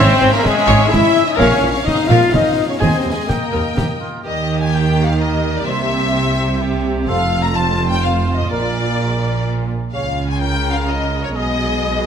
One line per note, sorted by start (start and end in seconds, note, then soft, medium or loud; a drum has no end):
0.00 0.32 C4 loud
0.00 1.60 C#4 loud
0.00 0.31 C5 loud
0.00 0.32 C5 loud
0.00 0.36 C5 loud
0.00 0.14 C#5 medium
0.00 0.19 C#5 loud
0.00 0.15 E5 medium
0.00 1.35 E5 medium
0.21 0.30 G#1 medium
0.21 0.30 G#2 medium
0.21 0.29 E4 medium
0.32 0.44 A#3 loud
0.32 0.44 A#4 medium
0.32 0.44 A#4 loud
0.32 0.45 A#4 medium
0.43 0.90 G#3 loud
0.43 0.91 G#4 loud
0.43 0.93 G#4 medium
0.43 0.92 G#4 loud
0.43 concert bass drum medium
0.43 snare medium
0.57 snare medium
0.67 0.76 G#1 loud
0.67 0.77 G#2 loud
0.67 0.89 C#5 loud
0.67 snare medium
0.89 1.00 G#1 medium
0.89 1.01 G#2 medium
0.89 1.26 E4 loud
0.89 0.99 E4 medium
0.89 1.26 E5 loud
0.89 1.27 E5 loud
0.89 1.25 E5 loud
0.89 concert bass drum medium
0.89 snare medium
1.16 snare medium
1.26 1.38 D#4 medium
1.26 1.36 D#5 medium
1.26 1.38 D#5 medium
1.37 1.47 A#1 loud
1.37 1.47 A#2 medium
1.37 1.69 C#4 loud
1.37 1.60 A#4 loud
1.37 1.44 C#5 loud
1.37 1.67 C#5 loud
1.37 1.55 C#5 medium
1.37 1.68 C#5 loud
1.37 2.78 F5 medium
1.37 1.55 F5 medium
1.37 concert bass drum medium
1.37 snare medium
1.61 1.70 A#1 medium
1.61 1.70 A#2 medium
1.61 1.69 C#4 medium
1.68 1.78 C#4 medium
1.68 1.84 C#5 medium
1.68 1.85 C#5 medium
1.83 2.08 D#4 loud
1.83 1.95 D#5 medium
1.83 2.09 D#5 loud
1.83 2.11 D#5 medium
1.83 concert bass drum medium
1.83 snare medium
2.08 2.17 A#1 medium
2.08 2.19 A#2 medium
2.08 2.32 F4 loud
2.08 2.31 A#4 medium
2.08 2.32 F5 medium
2.08 2.33 F5 medium
2.31 2.41 A#1 medium
2.31 2.42 A#2 medium
2.31 2.41 C#4 medium
2.31 2.69 D#4 loud
2.31 2.68 D#5 medium
2.31 2.71 D#5 medium
2.31 concert bass drum medium
2.31 snare medium
2.68 2.74 C#4 medium
2.68 2.80 C#5 medium
2.68 2.74 C#5 medium
2.68 2.79 C#5 medium
2.80 2.89 D#2 medium
2.80 3.11 C4 medium
2.80 3.03 G#4 medium
2.80 3.12 C5 medium
2.80 2.87 C5 medium
2.80 3.12 C5 medium
2.80 2.97 D#5 medium
2.80 4.02 D#5 medium
2.80 2.97 G#5 medium
2.80 3.28 G#5 medium
2.80 concert bass drum medium
2.80 snare medium
3.04 3.12 D#2 soft
3.04 3.14 D#2 soft
3.04 3.12 C4 soft
3.11 3.29 G#3 medium
3.11 3.29 G#4 medium
3.11 3.28 G#4 medium
3.11 3.29 G#4 medium
3.27 4.00 A#3 medium
3.27 4.00 A#4 medium
3.27 4.00 A#4 soft
3.27 3.45 D#5 soft
3.27 3.46 G5 medium
3.27 4.05 G5 medium
3.27 concert bass drum medium
3.27 snare medium
3.52 3.61 D#2 medium
3.52 3.75 A#4 medium
3.77 3.85 D#2 soft
3.77 3.86 D#2 soft
3.77 3.85 D#4 soft
3.77 3.88 G4 medium
3.77 concert bass drum medium
3.77 snare medium
4.00 4.23 F4 medium
4.24 5.63 D#2 medium
4.24 5.63 D#3 medium
4.24 4.41 G3 medium
4.24 7.04 A#3 medium
4.24 5.15 G4 medium
4.24 7.04 G4 medium
4.24 4.42 A#4 medium
4.24 4.58 D#5 medium
4.24 4.42 D#5 soft
4.24 4.59 D#5 medium
4.60 4.72 G#5 medium
4.60 4.65 G#5 medium
4.60 4.74 G#5 medium
4.71 5.02 G5 medium
4.71 4.80 G5 medium
4.71 5.04 G5 medium
5.02 5.19 F5 medium
5.02 5.09 F5 medium
5.02 5.21 F5 medium
5.19 5.66 A#4 medium
5.19 5.54 D#5 medium
5.19 5.55 D#5 medium
5.54 5.66 D5 soft
5.54 5.67 D5 soft
5.54 5.68 D5 medium
5.66 7.05 C2 medium
5.66 7.05 C3 medium
5.66 5.83 G3 medium
5.66 5.83 A#4 medium
5.66 5.83 C5 medium
5.66 6.12 C5 medium
5.66 6.82 E5 medium
5.66 6.83 E5 medium
5.66 6.85 E5 medium
6.13 6.63 C5 medium
6.61 7.10 G4 medium
7.08 8.50 F1 medium
7.08 8.50 F2 medium
7.08 7.25 F3 medium
7.08 8.47 A3 medium
7.08 9.69 F4 medium
7.08 7.55 A4 medium
7.08 7.25 A4 medium
7.08 7.24 C5 medium
7.08 7.41 F5 medium
7.43 7.48 A#5 medium
7.43 7.55 A#5 medium
7.54 8.49 C5 medium
7.54 7.62 A5 medium
7.54 7.87 A5 medium
7.87 8.02 G5 medium
7.87 8.03 G5 medium
7.87 8.04 G5 medium
8.03 8.34 F5 medium
8.03 8.11 F5 medium
8.03 8.36 F5 medium
8.34 8.50 D#5 medium
8.34 8.51 D#5 medium
8.50 9.70 A#1 medium
8.50 9.71 A#2 medium
8.50 8.68 F3 medium
8.50 9.71 A#3 medium
8.50 8.67 A#4 medium
8.50 9.67 A#4 medium
8.50 8.68 A#4 medium
8.50 9.44 D5 medium
8.50 9.45 D5 medium
9.92 11.30 C#2 soft
9.92 11.31 C#3 soft
9.92 10.09 G#3 soft
9.92 11.31 G#3 soft
9.92 11.31 F4 soft
9.92 10.09 G#4 soft
9.92 10.09 C#5 soft
9.92 10.26 F5 medium
9.92 10.27 F5 medium
10.28 10.40 G#5 medium
10.28 10.41 G#5 soft
10.28 10.41 G#5 medium
10.39 11.37 A#4 medium
10.39 10.71 G5 medium
10.39 10.72 G5 medium
10.71 10.87 F5 medium
10.71 10.78 F5 soft
10.71 10.88 F5 medium
10.86 11.22 D#5 medium
10.86 11.23 D#5 medium
10.86 11.25 D#5 medium
11.23 11.34 C#5 medium
11.23 11.35 C#5 soft
11.23 11.28 C#5 medium
11.33 12.06 B1 medium
11.33 12.06 B2 medium
11.33 12.06 G#3 medium
11.33 11.52 A#3 soft
11.33 12.06 G#4 medium
11.33 11.51 G#4 medium
11.33 12.06 G#4 medium
11.33 11.50 D#5 soft
11.33 12.06 D#5 medium